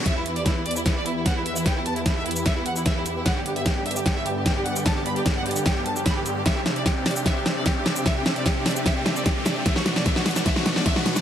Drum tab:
HH |x---x-x-x---xx--x---x---x---x---|x---x-x-x---xx--x---x---x---x---|x---x-x-x---xx--x---x---x---x---|x---x-x-x---xx--x---x---x---x---|
SH |--------------x---------------x-|--------------x-------x-----x---|--------------x---------------x-|--------------x-------x-----x---|
SD |o-------o-------o-------o-------|o-------o-------o-------o-------|o-------o-------o-------o-------|o-------o-------o-------o-------|
BD |o-------o-------o-------o-------|o-------o-------o-------o-------|o-------o-------o-------o-------|o-------o-------o-------o-------|

HH |x---x-x-x---ox--x---x---x---x---|x---x-x-x---ox--x---x---x---x---|x---x-x-x---ox--x---x---x---x---|
SH |--------------x---------------x-|--------------x-------x-----x---|--------------x---------------x-|
SD |o---o---o---o---o---o---o---o---|o---o---o---o---o---o---o---o---|o-o-o-o-o-o-o-o-o-o-o-o-o-o-o-o-|
BD |o-------o-------o-------o-------|o-------o-------o-------o-------|o-------o-------o-------o-------|